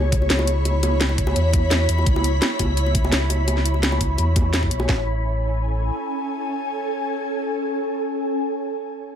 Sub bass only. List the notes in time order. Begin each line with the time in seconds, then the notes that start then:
Already playing: C#2
0.30 C#2
1.18 C#2
1.36 E2
1.89 E2
2.06 C#2
2.59 C#2
3.12 C#2
4.01 C#2
4.18 E2
4.71 B1
4.89 A1